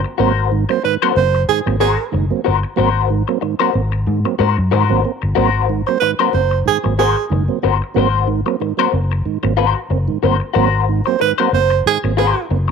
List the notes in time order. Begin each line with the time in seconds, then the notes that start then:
0.04 muted clean electric guitar stroke
0.18 G#1 F#3 A#3 C4 F#4 A#4 C5
0.52 G#2 D#3
0.69 F#3 A#3 C4 C5, muted clean electric guitar stroke
0.84 G#2 D#3 B4, muted clean electric guitar stroke
1.02 F#3 A#3 C4 F#4 A#4 C5
1.16 F#1 A#3 C4 C5, muted clean electric guitar stroke
1.35 muted clean electric guitar stroke
1.48 G#2 D#3 G#4, muted fingered electric bass stroke
1.66 G#1 F#3 A#3 C4, muted clean electric guitar stroke
1.80 A#3 C4 F#4 G#4 A#4 C5
1.99 muted clean electric guitar stroke
2.12 F#1 G#2 D#3, muted clean electric guitar stroke
2.30 F#3 A#3 C4
2.44 G1 A#3 C4 F#4 A#4 C5
2.63 muted clean electric guitar stroke
2.76 G#1 F#3 A#3 C4 F#4 A#4 C5
3.10 G#2 D#3
3.28 F#3 A#3 C4, muted clean electric guitar stroke
3.41 G#2 D#3, muted clean electric guitar stroke
3.59 F#3 A#3 C4 F#4 A#4 C5
3.74 G#1 A#3 C4, muted clean electric guitar stroke
3.92 muted clean electric guitar stroke
4.07 G#2 D#3
4.25 F#3 A#3 C4, muted clean electric guitar stroke
4.39 G#2 A#3 C4 F#4 A#4 C5
4.58 F#2, muted clean electric guitar stroke
4.71 G#2 D#3 F#4 A#4 C5
4.89 G#1 F#3 A#3 C4
5.03 A#3 C4, muted clean electric guitar stroke
5.22 G1, muted clean electric guitar stroke
5.35 G#1 F#3 A#3 C4 F#4 A#4 C5
5.69 G#2 D#3
5.87 F#3 A#3 C4 C5, muted clean electric guitar stroke
6.00 G#2 D#3 B4, muted clean electric guitar stroke
6.19 F#3 A#3 C4 F#4 A#4 C5
6.33 F#1 A#3 C4 C5, muted clean electric guitar stroke
6.51 muted clean electric guitar stroke
6.66 G#2 D#3 G#4, muted fingered electric bass stroke
6.83 G#1 F#3 A#3 C4, muted clean electric guitar stroke
6.98 A#3 C4 F#4 G#4 A#4 C5
7.17 muted clean electric guitar stroke
7.30 F#1 G#2 D#3, muted clean electric guitar stroke
7.48 F#3 A#3 C4
7.62 G1 A#3 C4 F#4 A#4 C5
7.82 muted clean electric guitar stroke
7.94 G#1 F#3 A#3 C4 F#4 A#4 C5
8.27 G#2 D#3
8.46 F#3 A#3 C4, muted clean electric guitar stroke
8.60 G#2 D#3, muted clean electric guitar stroke
8.77 F#3 A#3 C4 F#4 A#4 C5
8.93 F#1 A#3 C4, muted clean electric guitar stroke
9.12 muted clean electric guitar stroke
9.25 G#2 D#3, muted fingered electric bass stroke
9.43 G#1 F#3 A#3 C4, muted clean electric guitar stroke
9.57 A#3 C4 F#4 A#4 C5
9.75 muted clean electric guitar stroke
9.90 F#1 A#3 C4, muted clean electric guitar stroke
10.08 G#2 D#3
10.23 G1 F#3 A#3 C4 F#4 A#4 C5
10.40 muted clean electric guitar stroke
10.54 G#1 F#3 A#3 C4 F#4 A#4 C5
10.89 G#2 D#3
11.05 F#3 A#3 C4 C5, muted clean electric guitar stroke
11.20 G#2 D#3 B4, muted clean electric guitar stroke
11.38 F#3 A#3 C4 F#4 A#4 C5
11.52 F#1 A#3 C4 C5, muted clean electric guitar stroke
11.70 muted clean electric guitar stroke
11.86 G#2 D#3 G#4, muted fingered electric bass stroke
12.04 G#1 F#3 A#3 C4, muted clean electric guitar stroke
12.17 A#3 C4 F#4 G#4 A#4 C5
12.37 muted clean electric guitar stroke
12.50 F#1 A#3 C4, muted clean electric guitar stroke
12.68 muted clean electric guitar stroke